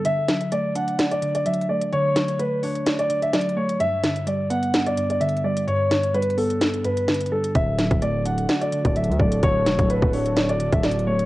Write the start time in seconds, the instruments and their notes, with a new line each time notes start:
0.05 synth keys D3, grand piano E5, closed hi-hat
0.29 synth keys F#3, snare, closed hi-hat
0.41 closed hi-hat
0.52 synth keys A3, grand piano D5, closed hi-hat
0.75 synth keys D4, grand piano F#5, closed hi-hat
0.88 closed hi-hat
0.99 synth keys D5, snare, closed hi-hat
1.11 grand piano D5, closed hi-hat
1.22 synth keys D3, closed hi-hat
1.35 grand piano D5, closed hi-hat
1.46 synth keys F#3, grand piano E5, closed hi-hat
1.54 closed hi-hat
1.61 closed hi-hat
1.69 synth keys A3, grand piano D5
1.82 closed hi-hat
1.93 synth keys D3, grand piano C#5, closed hi-hat
2.16 synth keys F#3, snare, closed hi-hat
2.28 closed hi-hat
2.39 synth keys A3, grand piano B4, closed hi-hat
2.63 synth keys D4, grand piano C#5, open hi-hat
2.75 closed hi-hat
2.86 synth keys D5, snare, closed hi-hat
2.99 grand piano D5, closed hi-hat
3.10 synth keys D3, closed hi-hat
3.22 grand piano E5, closed hi-hat
3.33 synth keys F#3, grand piano D5, snare, closed hi-hat
3.41 closed hi-hat
3.49 closed hi-hat
3.56 synth keys A3, grand piano C#5
3.69 closed hi-hat
3.80 synth keys G2, grand piano E5, closed hi-hat
4.04 synth keys D3, snare, closed hi-hat
4.16 closed hi-hat
4.27 synth keys G3, grand piano D5, closed hi-hat
4.50 synth keys B3, grand piano F#5, closed hi-hat
4.63 closed hi-hat
4.74 synth keys D4, snare, closed hi-hat
4.86 grand piano D5, closed hi-hat
4.97 synth keys G2, closed hi-hat
5.10 grand piano D5, closed hi-hat
5.20 synth keys D3, grand piano E5, closed hi-hat
5.29 closed hi-hat
5.37 closed hi-hat
5.44 synth keys G3, grand piano D5
5.57 closed hi-hat
5.67 synth keys G2, grand piano C#5, closed hi-hat
5.91 synth keys D3, snare, closed hi-hat
6.04 closed hi-hat
6.14 synth keys G3, grand piano B4, closed hi-hat
6.23 closed hi-hat
6.30 closed hi-hat
6.38 synth keys B3, grand piano A4, open hi-hat
6.51 closed hi-hat
6.62 synth keys D4, snare, closed hi-hat
6.74 closed hi-hat
6.85 synth keys G2, grand piano B4, closed hi-hat
6.97 closed hi-hat
7.08 synth keys D3, snare, closed hi-hat
7.15 closed hi-hat
7.21 closed hi-hat
7.26 closed hi-hat
7.32 synth keys G3, grand piano A4
7.44 closed hi-hat
7.55 808-style bass D1, synth keys D3, analog synth pad D3 A3 F#4 A4, grand piano E5, kick, closed hi-hat
7.79 synth keys F#3, snare, closed hi-hat
7.91 808-style bass D1, kick, closed hi-hat
8.02 synth keys A3, grand piano D5, closed hi-hat
8.25 synth keys D4, grand piano F#5, closed hi-hat
8.38 closed hi-hat
8.49 synth keys D5, snare, closed hi-hat
8.61 grand piano D5, closed hi-hat
8.72 synth keys D3, closed hi-hat
8.85 808-style bass D1, grand piano D5, kick, closed hi-hat
8.96 synth keys F#3, grand piano E5, closed hi-hat
9.04 closed hi-hat
9.08 808-style bass D2, closed hi-hat
9.19 808-style bass D1, synth keys A3, grand piano D5, kick
9.32 closed hi-hat
9.43 808-style bass D1, synth keys D3, grand piano C#5, kick, closed hi-hat
9.66 808-style bass E1, synth keys F#3, snare, closed hi-hat
9.78 808-style bass D1, kick, closed hi-hat
9.90 synth keys A3, grand piano B4, closed hi-hat
10.02 808-style bass D1, kick
10.13 synth keys D4, grand piano C#5, open hi-hat
10.25 closed hi-hat
10.36 synth keys D5, snare, closed hi-hat
10.49 grand piano D5, closed hi-hat
10.60 synth keys D3, closed hi-hat
10.72 808-style bass D1, grand piano E5, kick, closed hi-hat
10.83 synth keys F#3, grand piano D5, snare, closed hi-hat
10.91 closed hi-hat
10.99 closed hi-hat
11.07 synth keys A3, grand piano C#5
11.19 closed hi-hat